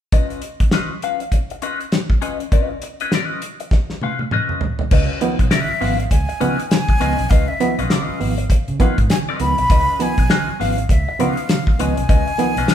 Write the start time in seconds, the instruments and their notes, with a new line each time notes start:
0.12 clean electric guitar C#4 F4 B4 D#5, kick, closed hi-hat
0.30 closed hi-hat
0.42 closed hi-hat
0.60 muted clean electric guitar stroke, kick, closed hi-hat
0.71 clean electric guitar C#4 F4 B4 D#5, snare, closed hi-hat
0.92 muted clean electric guitar stroke
1.02 clean electric guitar C#4 F4 B4 F5, closed hi-hat
1.20 muted clean electric guitar stroke, closed hi-hat
1.32 muted clean electric guitar stroke, kick, closed hi-hat
1.50 muted clean electric guitar stroke, closed hi-hat
1.62 clean electric guitar C#4 F4 B4 D#5, closed hi-hat
1.79 muted clean electric guitar stroke, closed hi-hat
1.92 snare, closed hi-hat
2.10 muted clean electric guitar stroke, kick
2.22 clean electric guitar C#4 F4 B4 D#5, closed hi-hat
2.40 muted clean electric guitar stroke, closed hi-hat
2.52 clean electric guitar C#4 F4 B4 D#5, kick, closed hi-hat
2.70 muted clean electric guitar stroke
2.82 muted clean electric guitar stroke, closed hi-hat
3.00 clean electric guitar C#4 F4 B4 D#5, closed hi-hat
3.12 clean electric guitar C4 E4 A#4 D5, snare, closed hi-hat
3.25 clean electric guitar C#4 F4 B4 D#5
3.42 muted clean electric guitar stroke, closed hi-hat
3.60 muted clean electric guitar stroke, closed hi-hat
3.71 muted clean electric guitar stroke, kick, snare
3.90 snare
4.01 clean electric guitar C#4 F4 B4 F5, high tom
4.19 muted clean electric guitar stroke, high tom
4.31 clean electric guitar C#4 F4 B4 D#5, mid tom
4.49 mid tom
4.61 muted clean electric guitar stroke, floor tom
4.79 muted clean electric guitar stroke, floor tom
4.91 fingered electric bass C#2, reed electric piano C#3, clean electric guitar C#4 F4 B4 D#5, kick, crash
5.21 reed electric piano D#3 F3 B3, closed hi-hat
5.39 fingered electric bass B1, reed electric piano F3 B3, muted clean electric guitar stroke, kick, closed hi-hat
5.51 reed electric piano C#3, clean electric guitar C#4 F4 B4 D#5, flute E5, snare, closed hi-hat
5.69 muted clean electric guitar stroke, muted fingered electric bass stroke
5.81 fingered electric bass G#1, reed electric piano D#3 F3 B3, clean electric guitar C#4 F4 B4 F5, open hi-hat
5.99 flute F5, muted clean electric guitar stroke, closed hi-hat
6.11 fingered electric bass C#2, flute G#5, muted clean electric guitar stroke, kick, closed hi-hat
6.29 muted clean electric guitar stroke, closed hi-hat
6.40 fingered electric bass C#3, reed electric piano D#3 F3 B3, clean electric guitar C#4 F4 B4 D#5, closed hi-hat
6.59 muted clean electric guitar stroke, closed hi-hat
6.69 reed electric piano C#3, flute G#5, snare, closed hi-hat
6.89 muted clean electric guitar stroke, kick, closed hi-hat
7.00 fingered electric bass C#2, reed electric piano D#3 F3 B3, clean electric guitar C#4 F4 B4 D#5, closed hi-hat
7.18 fingered electric bass B1, reed electric piano F3 B3, muted clean electric guitar stroke, closed hi-hat
7.30 fingered electric bass C#2, reed electric piano C#3, clean electric guitar C#4 F4 B4 D#5, flute F5, kick, closed hi-hat
7.48 flute E5, muted clean electric guitar stroke
7.60 reed electric piano D#3 F3 B3, muted clean electric guitar stroke, closed hi-hat
7.78 fingered electric bass B1, reed electric piano F3 B3, clean electric guitar C#4 F4 B4 D#5, flute F5, closed hi-hat
7.89 reed electric piano C#3, clean electric guitar C4 E4 A#4 D5, snare, closed hi-hat
8.02 clean electric guitar C#4 F4 B4 D#5
8.09 muted fingered electric bass stroke
8.20 fingered electric bass G#1, reed electric piano D#3 F3 B3, muted clean electric guitar stroke, open hi-hat
8.38 reed electric piano F3 B3, muted clean electric guitar stroke, closed hi-hat
8.50 muted fingered electric bass stroke, muted clean electric guitar stroke, kick, closed hi-hat
8.68 fingered electric bass C#3, closed hi-hat
8.79 reed electric piano D#3 F3 B3, clean electric guitar C#4 F4 B4 F5, kick, closed hi-hat
8.98 fingered electric bass G#2, muted clean electric guitar stroke, kick, closed hi-hat
9.10 reed electric piano C#3, flute G#5, muted clean electric guitar stroke, snare, closed hi-hat
9.29 clean electric guitar C#4 F4 B4 D#5
9.40 fingered electric bass C#2, reed electric piano D#3 F3 B3, flute B5, muted clean electric guitar stroke, closed hi-hat
9.58 fingered electric bass B1, reed electric piano F3 B3, muted clean electric guitar stroke, closed hi-hat
9.70 fingered electric bass C#2, reed electric piano C#3, clean electric guitar C#4 F4 B4 D#5, kick, closed hi-hat
9.99 reed electric piano D#3 F3 B3, flute G#5, closed hi-hat
10.18 fingered electric bass B1, reed electric piano F3 B3, muted clean electric guitar stroke, kick, closed hi-hat
10.30 reed electric piano C#3, clean electric guitar C#4 F4 B4 D#5, snare, closed hi-hat
10.48 muted fingered electric bass stroke, muted clean electric guitar stroke
10.60 fingered electric bass G#1, reed electric piano D#3 F3 B3, clean electric guitar C#4 F4 B4 F5, flute F5, snare, open hi-hat
10.78 reed electric piano F3 B3, muted clean electric guitar stroke, closed hi-hat
10.89 fingered electric bass C#2, flute E5, muted clean electric guitar stroke, kick, closed hi-hat
11.09 muted clean electric guitar stroke
11.19 fingered electric bass C#3, reed electric piano D#3 F3 B3, clean electric guitar C#4 F4 B4 D#5, flute F5, closed hi-hat
11.37 muted clean electric guitar stroke, closed hi-hat
11.49 reed electric piano C#3, snare, closed hi-hat
11.67 muted clean electric guitar stroke, kick
11.79 fingered electric bass C#2, reed electric piano D#3 F3 B3, clean electric guitar C#4 F4 B4 D#5, flute G#5, closed hi-hat
11.97 fingered electric bass B1, reed electric piano F3 B3, muted clean electric guitar stroke, closed hi-hat
12.09 fingered electric bass C#2, reed electric piano C#3, clean electric guitar C#4 F4 B4 D#5, kick, closed hi-hat
12.27 muted clean electric guitar stroke, closed hi-hat
12.38 reed electric piano D#3 F3 B3, muted clean electric guitar stroke, closed hi-hat
12.56 fingered electric bass B1, reed electric piano F3 B3, clean electric guitar C#4 F4 B4 D#5, closed hi-hat
12.68 reed electric piano C#3, clean electric guitar C#4 F4 B4 D#5, snare, closed hi-hat